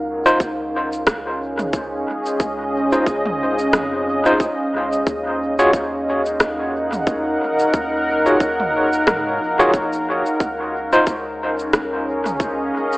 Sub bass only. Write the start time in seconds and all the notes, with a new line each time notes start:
Already playing: C#2
2.40 C#2
3.73 F2
4.73 C#2
5.07 D#2
7.74 D#2
9.07 G#2
9.41 A#1
10.40 C#2